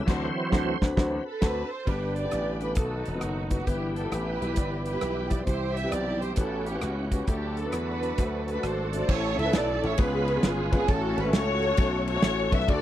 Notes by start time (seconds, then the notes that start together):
0.05 D2 D3 E3 F#3 C4 D4 F#4 A4 C5, kick, snare, crash
0.37 C5
0.52 D2 C4 D4 F#4 A4, kick, snare
0.82 D2 C4 D4 F#4 B4 C5, kick, snare
0.97 D2 E3 F#3 C4 D4 F#4 C5, kick, snare
1.27 A4
1.41 D2 C4 D4 F#4 A4 B4, kick, snare, crash
1.71 C5
1.85 G1 G2 D3 G3 A#3 B3 D4 G4 B4, kick, crash
1.91 B3
2.16 G4 B4 D5, closed hi-hat
2.24 B3 D4 G4 D5
2.31 A1, cross-stick, closed hi-hat
2.61 B3 D4 G4 A4 B4, closed hi-hat
2.75 B1 B2 D#3 A3 B3 D#4 F#4 A4, kick, closed hi-hat
3.05 E1, closed hi-hat
3.14 B3 D#4 F#4 A4
3.20 F#1 F#4, cross-stick, closed hi-hat
3.49 B3 D#4 F#4 B4, kick, closed hi-hat
3.59 cross-stick
3.65 G1 G2 E3 G3 B3 E4 G4 B4, kick, closed hi-hat
3.95 A4, closed hi-hat
4.04 B3 E4 G4 A4
4.10 A1 E4 G4 B4, cross-stick, closed hi-hat
4.42 B1 B3 E4 G4 B4, closed hi-hat
4.56 G1 B3 E4 G4 D5, kick, closed hi-hat
4.85 E4 G4 B4, closed hi-hat
4.94 B3 E4 G4 B4
5.01 B1, cross-stick, closed hi-hat
5.30 B3 E4 G4 D5, kick, closed hi-hat
5.45 C2 C3 E3 G3 C4 E4 F#4 G4 C5, kick, closed hi-hat
5.53 G4
5.75 E5, closed hi-hat
5.84 C4 E4 G4 B4
5.91 B1 D5, cross-stick, closed hi-hat
6.20 C4 E4 G4 C5, closed hi-hat
6.36 A1 A2 B3 C#4 E4 F#4 G4 A4 B4, kick, closed hi-hat
6.40 C#4
6.66 G4, closed hi-hat
6.75 C#4 F#4 G4 B4
6.81 C#2 F#4, cross-stick, closed hi-hat
7.11 C#4 F#4 G4 B4, kick, closed hi-hat
7.27 D2 D3 F#3 A3 D4 F#4 G4 A4, kick, closed hi-hat
7.34 A4
7.57 A4, closed hi-hat
7.65 A3 D4 F#4 B4
7.71 E2 D4 F#4 B4, cross-stick, closed hi-hat
8.03 A3 D4 F#4 B4, closed hi-hat
8.18 D2 A3 D4 F#4 C5, kick, closed hi-hat
8.48 D4 F#4 A4 B4, closed hi-hat
8.55 A3 D4 F#4 B4
8.63 G#1 C5, cross-stick, closed hi-hat
8.93 A3 D4 F#4 A4 C5 D5, closed hi-hat
9.01 cross-stick
9.07 A1 A2 A3 C#4 E4 A4 C#5, kick, crash
9.38 C#2 E5, ride
9.45 A3 C#4 E4 A4 B4
9.53 B1 D5, snare, ride
9.82 A1 A3 C#4 E4 A4 C#5 E5, ride
9.98 C#2 C#3 G#3 B3 C#4 F4 G#4 B4, kick, ride
10.28 ride
10.35 B3 C#4 F4 G#4 C#5
10.43 G1 G#4, snare, ride
10.71 G#1 B3 C#4 F4 G#4 B4, kick, ride
10.75 G#4
10.87 A1 A2 G#3 A3 C#4 F#4 A4 C#5, kick, ride
10.91 A3 A4
11.17 G#1 B4, ride
11.24 A3 C#4 F#4 A4 E5
11.33 C#2 F#4 A4 C#5, snare, ride
11.61 A3 C#4 F#4 A4 C#5, ride
11.77 B1 A3 C#4 F#4 A4 C#5, kick, ride
12.08 F#4 A4 C#5, ride
12.15 A3 C#4 F#4 A4 C#5
12.22 A1, snare, ride
12.52 B1 A3 C#4 F#4 A4 B4 E5, kick, ride
12.60 snare
12.66 D2 D3 A3 D4 F4 F#4 A4 D5, kick, ride
12.72 F#4